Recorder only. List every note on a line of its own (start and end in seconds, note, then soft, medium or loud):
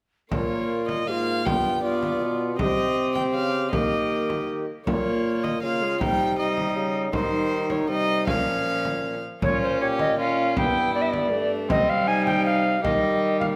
0.32 1.04 F4 medium
1.08 1.45 F4 medium
1.08 1.13 G4 soft
1.45 1.82 F4 medium
1.82 2.57 F4 medium
2.59 2.65 G#4 medium
2.64 3.70 G4 medium
3.72 4.66 G4 medium
4.87 5.59 F4 soft
5.63 6.02 F4 medium
6.01 6.38 D#4 medium
6.38 7.12 D#4 medium
7.13 7.87 D#4 medium
7.90 8.29 D#4 medium
8.28 9.15 C#4 medium
9.43 9.61 C#5 medium
9.62 9.80 C5 medium
9.81 9.87 C#5 medium
10.00 10.18 D#5 medium
10.20 10.56 F5 medium
10.57 10.94 G5 loud
10.95 11.03 D5 medium
11.02 11.11 E5 medium
11.09 11.51 D5 medium
11.09 11.14 D#5 medium
11.71 11.91 D#5 loud
11.90 12.09 F5 loud
12.07 12.26 G#5 loud
12.26 12.45 G5 medium
12.46 12.83 F5 medium
12.84 13.39 D#5 medium
13.40 13.46 F5 medium